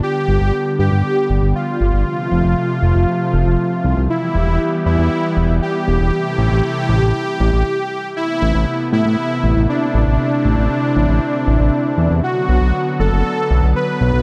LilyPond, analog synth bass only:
\new Staff \with { instrumentName = "Analog synth bass" } { \clef bass \time 4/4 \key a \minor \tempo 4 = 118 r8 g,,16 g,,16 r8 g,16 g,16 r8 g,,16 g,,16 r8 g,,16 g,,16 | r8 f,,16 f,,16 r8 f,,16 f,,16 r8 f,,16 f,,16 r8 c,16 c,16 | r8 e,,16 e,,16 r8 e,16 e,16 r8 e,,16 e,,16 r8 e,,16 e,,16 | r8 a,,16 a,,16 r8 a,,16 a,,16 r8 a,,16 a,,16 r4 |
r8 a,,16 a,,16 r8 a,16 a,16 r8 a,,16 a,,16 r8 a,,16 a,,16 | r8 a,,16 a,,16 r8 a,,16 a,,16 r8 a,,16 a,,16 r8 e,16 e,16 | r8 b,,16 b,,16 r8 fis,,16 fis,,16 r8 b,,16 b,,16 r8 b,,16 b,,16 | }